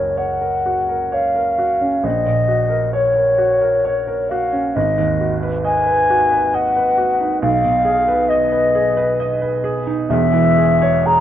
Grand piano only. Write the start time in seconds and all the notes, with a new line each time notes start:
Already playing: F#1 C#2 F#4 A#4
0.17 C#5
0.41 A#4
0.66 F#4
0.89 A#4
1.12 C#5
1.36 A#4
1.58 F#4
1.81 C#4
2.03 A#1
2.26 A#2
2.48 F#4
2.69 A#4
2.93 C#5
3.16 A#4
3.38 F#4
3.61 A#4
3.85 C#5
4.07 A#4
4.31 F#4
4.53 C#4
4.76 G#1
4.98 D#2
5.21 F#4
5.43 B4
5.64 D#5
5.86 B4
6.10 F#4
6.31 B4
6.54 D#5
6.77 B4
6.98 F#4
7.20 D#4
7.42 B1
7.64 B2
7.85 G#4
8.08 B4
8.30 D#5
8.52 B4
8.75 G#4
8.97 B4
9.20 D#5
9.42 B4
9.64 G#4
9.87 D#4
10.09 E1 E2
10.33 E3
10.58 G#4
10.82 C#5
11.06 G#4